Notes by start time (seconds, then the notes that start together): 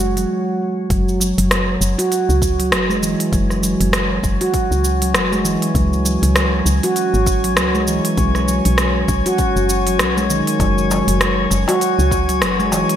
Already playing: F#1 C#4 C#5
0.00 G#3, shaker
0.17 F#3, open hi-hat, shaker
0.90 F#1 F#3 C#4 C#5, kick, open hi-hat, shaker
1.09 shaker
1.20 F#3, shaker
1.38 F#1 F#3, open hi-hat, shaker
1.51 cross-stick, open hi-hat, shaker
1.81 F#1, shaker
1.98 F#4, open hi-hat, shaker
2.12 open hi-hat, shaker
2.29 C#2, shaker
2.42 kick, shaker
2.59 F#3, open hi-hat, shaker
2.72 F#1 F#3, cross-stick, open hi-hat, shaker
2.90 G#3, shaker
3.02 E3, shaker
3.20 open hi-hat, shaker
3.32 F#1 F#3, kick, open hi-hat, shaker
3.50 cross-stick, shaker
3.63 F#3, shaker
3.80 F#1 F#3, open hi-hat, shaker
3.93 cross-stick, open hi-hat, shaker
4.24 F#1, kick, shaker
4.41 F#4, open hi-hat, shaker
4.54 kick, open hi-hat, shaker
4.71 C#2, shaker
4.84 shaker
5.02 F#3, open hi-hat, shaker
5.14 F#1 F#3, cross-stick, open hi-hat, shaker
5.32 G#3, shaker
5.44 E3, shaker
5.62 open hi-hat, shaker
5.75 C#2 F#3, kick, open hi-hat, shaker
5.93 shaker
6.05 F#3, shaker
6.22 C#2 F#3, open hi-hat, shaker
6.36 cross-stick, open hi-hat, shaker
6.66 C#2, shaker
6.83 F#4, open hi-hat, shaker
6.96 open hi-hat, shaker
7.14 G#1, shaker
7.27 kick, shaker
7.44 F#3, open hi-hat, shaker
7.57 C#2 F#3, cross-stick, open hi-hat, shaker
7.75 G#3, shaker
7.87 E3, shaker
8.05 open hi-hat, shaker
8.17 B1 F#3, kick, open hi-hat, shaker
8.35 cross-stick, shaker
8.48 F#3, shaker
8.65 B1 F#3, open hi-hat, shaker
8.78 cross-stick, open hi-hat, shaker
9.08 B1, kick, shaker
9.26 F#4, open hi-hat, shaker
9.38 kick, open hi-hat, shaker
9.56 F#1, shaker
9.69 shaker
9.87 F#3, open hi-hat, shaker
9.99 B1 F#3, cross-stick, open hi-hat, shaker
10.17 G#3, shaker
10.30 D#3, shaker
10.47 open hi-hat, shaker
10.60 F#1 F#3, kick, open hi-hat, darbuka tek, shaker
10.78 shaker
10.90 F#3, darbuka tek, shaker
11.08 F#1 F#3, open hi-hat, shaker
11.21 cross-stick, open hi-hat, shaker
11.51 F#1, darbuka ka, shaker
11.68 F#4, open hi-hat, darbuka tek, shaker
11.81 open hi-hat, shaker
11.99 C#2, shaker
12.11 kick, darbuka ka, shaker
12.29 F#3, open hi-hat, shaker
12.41 F#1 F#3, cross-stick, open hi-hat, shaker
12.59 G#3, shaker
12.72 E3, darbuka tek, shaker
12.89 open hi-hat, shaker